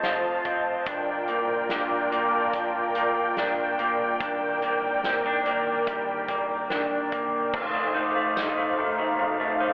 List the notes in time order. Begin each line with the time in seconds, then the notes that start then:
Already playing: F2 A3 C4 F4 C5 D#5 A5
0.03 F1 F4, snare, closed hi-hat
0.45 F1 C4, kick, closed hi-hat
0.85 G1 G2 D4 F4 A#4 D5 G5, kick, closed hi-hat
1.09 D5
1.28 A#3, closed hi-hat
1.49 G1
1.69 G1 D4, snare, closed hi-hat
2.12 G1 A#3, closed hi-hat
2.22 F5
2.28 A5
2.32 A#5
2.53 G1 F3, kick, closed hi-hat
2.95 G1 A#3, closed hi-hat
3.37 G1 D4, snare, closed hi-hat
3.79 F1 A#3, closed hi-hat
4.20 G1 G2 D#3 D4 A#4 D5, kick, closed hi-hat
4.62 A#3, closed hi-hat
4.82 G1
5.03 G1 C4, snare, closed hi-hat
5.26 D4
5.45 G1 A#3, closed hi-hat
5.87 G1 G3, kick, closed hi-hat
6.28 G1 A#3, kick, closed hi-hat
6.37 A#5
6.70 G1 D4, snare, closed hi-hat
7.12 G1 A#3, kick, closed hi-hat
7.53 F1 A3 D#4 C5 F5, kick, crash
7.64 C6 D#6
7.74 A3
7.95 D#4, ride
8.03 D6
8.16 A3
8.36 F1 D#4, snare, ride, tambourine
8.58 A3
8.78 F1 D#3, ride
8.98 A3
9.19 F1 F2, ride
9.40 A3
9.60 G1 D#4, ride